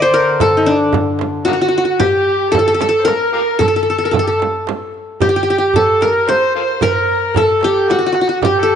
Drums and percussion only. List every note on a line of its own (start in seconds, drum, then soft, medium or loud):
0.40 darbuka dum loud
0.40 frame drum medium
0.54 darbuka ka soft
0.93 darbuka dum loud
0.93 frame drum medium
1.19 darbuka tek medium
1.19 frame drum medium
1.45 darbuka tek medium
1.45 frame drum medium
1.73 darbuka ka soft
1.99 darbuka dum medium
1.99 frame drum medium
2.53 darbuka dum medium
2.53 frame drum medium
2.80 darbuka tek medium
2.80 frame drum medium
3.07 darbuka tek medium
3.07 frame drum medium
3.33 darbuka ka soft
3.60 darbuka dum medium
3.60 frame drum medium
4.13 darbuka dum loud
4.13 frame drum medium
4.40 darbuka tek medium
4.40 frame drum medium
4.67 darbuka tek medium
4.67 frame drum medium
4.94 darbuka ka soft
5.20 darbuka dum medium
5.20 frame drum medium
5.74 darbuka dum loud
5.74 frame drum medium
6.01 darbuka tek medium
6.01 frame drum medium
6.28 darbuka tek medium
6.28 frame drum medium
6.81 darbuka dum loud
6.81 frame drum medium
6.95 darbuka ka soft
7.35 darbuka dum medium
7.35 frame drum medium
7.61 darbuka tek medium
7.61 frame drum medium
7.88 darbuka tek medium
7.88 frame drum medium
8.01 darbuka ka medium
8.14 darbuka tek medium
8.28 darbuka ka medium
8.42 darbuka dum medium
8.42 frame drum loud